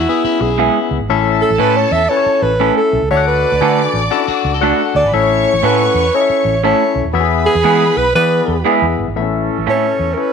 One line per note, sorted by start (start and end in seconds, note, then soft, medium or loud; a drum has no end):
0.00 0.43 E4 medium
0.08 0.49 B3 medium
0.08 0.49 E4 medium
0.08 0.23 E4 medium
0.08 0.49 G#4 medium
0.08 0.24 G#4 medium
0.08 0.49 E5 medium
0.24 0.97 C#4 medium
0.24 0.97 E4 medium
0.24 muted fingered electric bass stroke soft
0.41 0.68 B1 medium
0.41 0.60 G#4 medium
0.58 0.77 G#3 medium
0.58 0.77 B3 medium
0.58 0.99 B3 medium
0.58 0.78 E4 medium
0.58 0.99 E4 medium
0.58 0.78 G#4 medium
0.58 1.00 G#4 medium
0.58 1.00 E5 medium
0.91 0.98 C#2 medium
1.00 1.07 G#1 medium
1.09 1.42 A1 loud
1.09 1.88 A2 medium
1.09 1.50 C#4 loud
1.09 1.50 E4 loud
1.09 2.89 A4 loud
1.09 1.50 A4 loud
1.09 1.50 E5 loud
1.09 2.89 A5 loud
1.41 1.61 A4 loud
1.50 1.58 A1 medium
1.58 1.85 A2 loud
1.58 1.78 A3 medium
1.58 1.99 C#4 medium
1.58 1.78 C#4 medium
1.58 2.00 E4 medium
1.58 1.78 E4 medium
1.58 2.00 A4 medium
1.58 1.78 A4 loud
1.58 1.78 B4 medium
1.58 2.00 C#5 medium
1.76 1.94 C#5 medium
1.91 2.06 E2 medium
1.91 2.11 E5 medium
2.09 2.51 C#4 medium
2.09 2.51 E4 medium
2.09 2.51 A4 medium
2.09 2.18 B4 medium
2.09 2.44 C#5 loud
2.17 2.54 C#5 medium
2.26 muted fingered electric bass stroke soft
2.42 2.69 A1 medium
2.42 2.77 B4 medium
2.60 2.79 A3 medium
2.60 3.00 C#4 medium
2.60 2.79 C#4 medium
2.60 3.01 E4 medium
2.60 2.79 E4 loud
2.60 3.00 A4 medium
2.60 2.79 A4 medium
2.60 3.01 E5 medium
2.77 3.09 A4 medium
2.93 3.00 B1 loud
3.02 3.09 C#2 medium
3.11 3.44 D2 loud
3.11 3.90 D3 medium
3.11 3.51 D4 medium
3.11 3.51 F#4 medium
3.11 3.51 A4 medium
3.11 3.27 C#5 medium
3.11 4.56 D5 loud
3.11 3.19 E5 medium
3.11 4.56 D6 loud
3.17 3.54 F#5 loud
3.27 4.02 B4 medium
3.52 3.59 D2 medium
3.61 3.86 D3 medium
3.61 3.80 A3 medium
3.61 4.01 D4 medium
3.61 3.80 D4 medium
3.61 4.01 F#4 medium
3.61 3.80 F#4 medium
3.61 4.01 A4 medium
3.61 3.81 A4 loud
3.61 4.01 G#5 medium
3.94 4.08 A1 medium
4.11 4.27 C#4 medium
4.11 4.51 D4 medium
4.11 4.27 E4 medium
4.11 4.52 F#4 medium
4.11 4.52 A4 medium
4.11 4.52 A5 loud
4.28 4.52 D4 medium
4.28 4.52 F#4 medium
4.28 muted fingered electric bass stroke soft
4.45 4.71 C#2 medium
4.54 5.10 F#4 medium
4.54 5.10 A4 medium
4.61 4.81 A3 medium
4.61 5.02 D4 medium
4.61 4.81 D4 medium
4.61 4.74 D4 medium
4.61 5.02 F#4 medium
4.61 4.81 F#4 medium
4.61 5.02 A4 medium
4.61 4.81 A4 medium
4.61 4.74 D5 medium
4.61 5.02 F#5 loud
4.74 4.80 E4 medium
4.74 4.80 E5 medium
4.79 4.95 F#4 medium
4.79 4.95 F#5 medium
4.94 5.02 D2 medium
4.94 4.96 G#4 medium
4.94 5.07 A4 medium
4.94 5.15 D5 loud
4.94 4.96 G#5 medium
4.94 5.07 A5 medium
5.04 5.11 G#1 medium
5.04 5.13 B4 medium
5.04 5.13 B5 medium
5.12 5.44 A1 loud
5.12 5.92 A2 medium
5.12 5.53 C#4 loud
5.12 5.53 E4 medium
5.12 5.53 A4 medium
5.12 6.93 C#5 loud
5.12 5.66 C#5 loud
5.12 5.53 E5 loud
5.12 6.93 C#6 loud
5.53 5.61 A1 medium
5.63 5.88 A2 loud
5.63 5.81 A3 medium
5.63 5.82 C#4 loud
5.63 6.04 C#4 medium
5.63 5.82 E4 loud
5.63 6.04 E4 medium
5.63 5.82 A4 loud
5.63 6.04 A4 medium
5.63 6.16 B4 loud
5.63 6.04 F#5 medium
5.94 6.09 E2 loud
6.15 6.54 C#4 medium
6.15 6.54 E4 medium
6.15 6.54 A4 medium
6.15 6.64 C#5 loud
6.15 6.22 D#5 medium
6.21 6.57 E5 medium
6.30 muted fingered electric bass stroke soft
6.45 6.72 A1 medium
6.63 6.82 A3 medium
6.63 6.82 C#4 medium
6.63 7.04 C#4 medium
6.63 7.04 E4 medium
6.63 6.82 E4 medium
6.63 7.04 A4 medium
6.63 6.83 A4 loud
6.63 7.11 C#5 medium
6.63 7.04 E5 medium
6.95 7.03 B1 loud
7.05 7.12 D#1 medium
7.13 7.46 E2 loud
7.13 7.93 E3 medium
7.13 7.54 B3 loud
7.13 7.54 E4 loud
7.13 7.22 F#4 medium
7.13 8.94 B4 loud
7.13 7.54 E5 loud
7.13 8.94 B5 loud
7.20 7.57 G#4 loud
7.46 7.99 G#4 loud
7.55 7.62 E2 loud
7.64 7.89 E3 loud
7.64 7.83 G#3 medium
7.64 7.83 B3 medium
7.64 8.04 B3 medium
7.64 8.05 E4 medium
7.64 7.83 E4 medium
7.64 8.05 G#4 medium
7.64 7.83 G#4 loud
7.64 8.05 F#5 medium
7.97 8.11 B1 loud
7.97 8.15 B4 loud
8.15 8.40 E3 loud
8.15 8.55 B3 medium
8.15 8.55 E4 medium
8.15 8.55 G#4 medium
8.15 8.62 B4 loud
8.15 8.56 D5 medium
8.48 8.62 E2 medium
8.65 8.83 G#3 medium
8.65 8.84 B3 medium
8.65 9.06 B3 medium
8.65 9.05 E4 medium
8.65 8.84 E4 medium
8.65 9.06 G#4 medium
8.65 8.84 G#4 medium
8.65 8.73 D5 medium
8.72 9.09 E5 medium
8.82 8.94 E2 medium
8.98 9.05 G1 loud
9.08 9.15 G#1 medium
9.16 9.49 A1 medium
9.16 9.95 A2 medium
9.16 10.33 E3 medium
9.16 10.33 A3 medium
9.16 9.24 B3 medium
9.16 10.33 C#4 medium
9.16 9.56 E4 medium
9.16 10.33 A4 medium
9.16 9.56 A4 medium
9.16 9.56 E5 medium
9.22 9.59 C#4 medium
9.58 9.65 A1 medium
9.67 9.92 A2 medium
9.67 9.85 A3 medium
9.67 9.75 C4 soft
9.67 9.85 C#4 medium
9.67 9.85 E4 medium
9.67 10.08 E4 medium
9.67 9.85 A4 medium
9.67 10.07 A4 medium
9.67 10.15 C#5 medium
9.67 10.07 E5 medium
9.74 10.11 C#4 medium
9.99 10.14 E2 medium
10.14 10.33 C#4 medium
10.14 10.33 E4 medium
10.14 10.33 A4 medium
10.14 10.21 A#4 medium
10.14 10.33 C#5 medium
10.19 10.33 B4 medium